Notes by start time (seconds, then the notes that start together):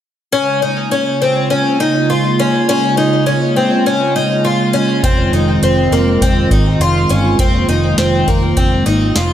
0.32 C#3 G#3 A#3 C#4 F4
0.62 D#4
0.91 C#4
1.22 C4
1.50 C#4
1.80 D#4
2.10 F4
2.40 C#4
2.69 C#4
2.97 D#4
3.26 C#4
3.56 C4
3.86 C#4
4.16 D#4
4.45 F4
4.73 C#4
5.04 F1 D#3 C4 F4, kick, closed hi-hat
5.32 F1 D#4, closed hi-hat
5.62 F1 C4, closed hi-hat
5.91 F1 A#3, closed hi-hat
6.21 F1 C4, kick, closed hi-hat
6.51 G#1 D#4, kick, closed hi-hat
6.80 F1 F4, closed hi-hat
7.09 G1 C#4, closed hi-hat
7.39 F1 A#3 C4, kick, closed hi-hat
7.68 F1 D#4, closed hi-hat
7.98 F1 C4, snare, closed hi-hat
8.27 F1 A#3, kick, closed hi-hat
8.57 F1 C4, kick, closed hi-hat
8.86 G#1 D#4, closed hi-hat
9.16 F1 F4, snare, closed hi-hat